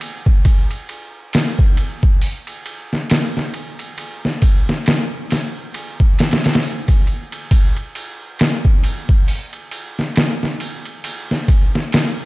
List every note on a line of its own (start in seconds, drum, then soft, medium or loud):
0.01 ride medium
0.01 shaker medium
0.26 kick medium
0.26 shaker medium
0.45 kick loud
0.45 ride medium
0.45 shaker soft
0.71 ride soft
0.89 ride medium
0.89 shaker medium
1.15 shaker soft
1.33 snare loud
1.33 ride medium
1.33 shaker soft
1.59 kick loud
1.77 ride medium
1.77 shaker medium
2.03 kick medium
2.03 shaker soft
2.21 open hi-hat medium
2.21 shaker soft
2.47 ride soft
2.66 ride medium
2.66 shaker medium
2.92 snare soft
2.92 shaker soft
3.10 snare loud
3.10 ride medium
3.10 shaker soft
3.37 snare soft
3.54 ride medium
3.54 shaker loud
3.79 ride soft
3.79 shaker soft
3.97 ride medium
3.97 shaker soft
4.25 snare soft
4.42 kick loud
4.42 ride medium
4.42 shaker loud
4.67 snare soft
4.67 shaker medium
4.86 snare loud
4.86 ride medium
4.86 shaker soft
5.30 snare medium
5.30 ride medium
5.30 shaker medium
5.55 shaker medium
5.74 ride medium
5.74 shaker soft
6.00 kick medium
6.18 snare medium
6.18 ride medium
6.18 shaker medium
6.31 snare medium
6.31 ride medium
6.44 snare medium
6.44 ride medium
6.44 shaker soft
6.54 snare medium
6.54 ride medium
6.63 ride medium
6.63 shaker soft
6.88 kick medium
6.88 ride medium
7.07 ride soft
7.07 shaker medium
7.32 ride medium
7.32 shaker medium
7.50 kick loud
7.50 ride medium
7.50 shaker soft
7.77 ride soft
7.95 ride medium
7.95 shaker medium
8.20 shaker soft
8.39 snare loud
8.39 ride medium
8.39 shaker soft
8.65 kick medium
8.83 ride medium
8.83 shaker medium
9.09 kick medium
9.09 shaker soft
9.27 open hi-hat medium
9.27 shaker soft
9.53 ride soft
9.71 ride medium
9.71 shaker medium
9.97 snare soft
9.97 shaker soft
10.16 snare loud
10.16 ride medium
10.16 shaker soft
10.43 snare soft
10.59 ride medium
10.59 shaker medium
10.85 ride soft
10.85 shaker soft
11.04 ride medium
11.04 shaker soft
11.31 snare soft
11.48 kick medium
11.48 ride medium
11.48 shaker medium
11.73 snare soft
11.73 shaker medium
11.92 snare loud
11.92 ride medium
11.92 shaker soft